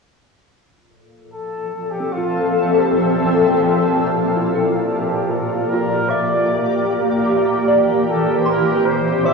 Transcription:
0.55 9.34 A#2 medium
0.86 4.99 A4 medium
1.09 6.88 F3 medium
1.33 1.92 A4 medium
1.44 5.00 C4 medium
1.66 4.99 E5 medium
1.91 2.14 G4 medium
2.00 4.52 C4 medium
2.13 2.74 F4 medium
2.17 2.93 F4 soft
2.73 2.89 A4 medium
2.77 4.51 G4 medium
2.87 3.50 C5 medium
4.19 9.34 G4 medium
4.36 6.88 E4 medium
4.55 5.89 A4 medium
4.89 8.14 A#3 medium
4.89 5.32 G4 medium
5.16 8.15 D5 medium
5.31 5.71 A4 medium
5.69 6.11 A#4 medium
5.74 7.05 F4 medium
6.09 6.69 D5 medium
6.09 7.84 E5 medium
7.17 9.34 E3 medium
7.68 9.34 D5 medium
8.09 8.38 A4 medium
8.13 9.34 C4 medium
8.27 9.34 C5 medium
8.39 8.51 C5 medium
8.45 9.34 C6 medium
8.50 8.88 A#4 medium
8.86 9.27 C5 medium
9.25 9.34 C5 medium
9.25 9.34 E5 medium
9.25 9.34 D6 medium

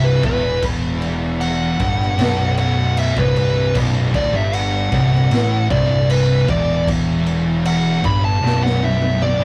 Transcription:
0.00 0.19 C1 loud
0.00 0.22 C2 loud
0.04 0.23 B4 medium
0.23 1.76 E1 loud
0.23 1.78 E2 loud
0.23 0.62 B4 loud
0.23 kick loud
0.23 crash medium
0.62 kick loud
0.62 crash medium
1.02 crash medium
1.41 2.54 F#5 loud
1.41 crash medium
1.79 2.16 G1 loud
1.79 2.17 G2 loud
1.79 kick loud
1.79 crash medium
2.02 snare soft
2.18 3.12 B0 loud
2.18 3.15 B1 loud
2.18 snare loud
2.18 crash medium
2.57 2.96 F#5 medium
2.57 crash medium
2.97 3.17 E5 loud
2.97 crash medium
3.17 3.71 C1 loud
3.17 3.74 C2 loud
3.17 3.37 B4 medium
3.17 kick loud
3.36 3.75 B4 loud
3.36 crash medium
3.75 4.11 B0 loud
3.75 4.13 B1 loud
3.75 kick loud
3.75 crash loud
4.14 4.32 D1 loud
4.14 4.32 D2 loud
4.14 4.34 D5 loud
4.14 kick loud
4.14 crash medium
4.33 4.88 G1 loud
4.33 4.91 G2 loud
4.33 4.55 E5 medium
4.53 5.67 F#5 medium
4.53 crash medium
4.92 5.28 C1 loud
4.92 5.30 C2 loud
4.92 kick loud
4.92 crash medium
5.15 snare soft
5.30 5.67 A1 loud
5.30 5.69 A2 loud
5.30 snare loud
5.30 crash medium
5.70 6.44 C1 loud
5.70 6.47 C2 loud
5.70 6.08 D5 loud
5.70 kick loud
5.70 crash medium
6.10 6.47 B4 medium
6.10 crash loud
6.47 8.00 E1 medium
6.47 8.02 E2 loud
6.47 6.87 D5 medium
6.47 kick loud
6.47 crash medium
6.88 kick loud
6.88 crash loud
7.26 crash medium
7.65 8.03 F#5 loud
7.65 crash medium
8.03 8.40 G1 loud
8.03 8.41 G2 loud
8.03 8.23 B5 loud
8.03 kick loud
8.03 crash medium
8.25 8.62 A5 loud
8.41 9.36 B0 loud
8.41 9.38 B1 loud
8.46 snare medium
8.63 8.84 F#5 medium
8.63 snare medium
8.83 9.21 E5 loud
8.83 high tom medium
9.02 high tom medium
9.22 9.44 D5 loud
9.22 mid tom loud
9.39 9.44 C1 medium
9.39 9.44 C2 loud
9.39 mid tom medium

